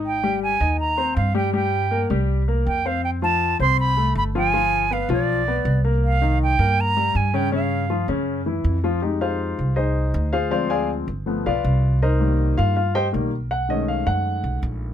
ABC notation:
X:1
M:4/4
L:1/8
Q:1/4=160
K:Fm
V:1 name="Flute"
g2 a2 b2 f g | g3 z3 g f | g =a2 c' =b2 b _a- | a2 f =d4 z |
f2 g2 b2 a g | f3 z4 z | z8 | z8 |
z8 | z8 |]
V:2 name="Grand piano"
[^D^d] [G,G]2 [Ee]2 [Cc]2 [G,G] | [G,G]2 [B,B] [G,G]2 [B,B]2 [Cc]- | [Cc] [F,F]2 [Cc]2 [=A,=A]2 [F,F] | [F,F]2 [=B,=B] [F,F]2 [B,B]2 [_B,_B]- |
[B,B] [E,E]2 [B,B]2 [G,G]2 [D,D] | [D,D]2 [F,F] [D,D]2 [=E,=E]2 [F,F] | z [FAcf]3 [EAce]3 [FAcf] | [Fc=df] [Adfa] z3 [F=Bdf]3 |
[EBce]3 [Ff] [Ff] [Gceg] z2 | ^f ^d =f ^f3 z2 |]
V:3 name="Grand piano" clef=bass
z8 | z8 | z8 | z8 |
z8 | z8 | [A,EG]3 z4 z | [F,A,C]3 z [F,=A,=B,] z3 |
z [E,G,B,]3 z2 [E,G,B,] z | z [^D,^G,=A,^C]6- [D,G,A,C] |]
V:4 name="Upright bass" clef=bass
A,,,3 E,,3 G,,2- | G,,3 C,,3 F,,2- | F,,3 C,,3 G,,,2- | G,,,3 =B,,,3 C,,2- |
C,,3 G,,3 G,,2- | G,,3 _G,,3 F,,2- | F,,3 C,,3 =D,,2- | =D,,3 G,,,2 =B,,, C,,2- |
C,,3 G,,3 =B,,,2- | =B,,,3 ^F,,2 B,,, _B,,,2 |]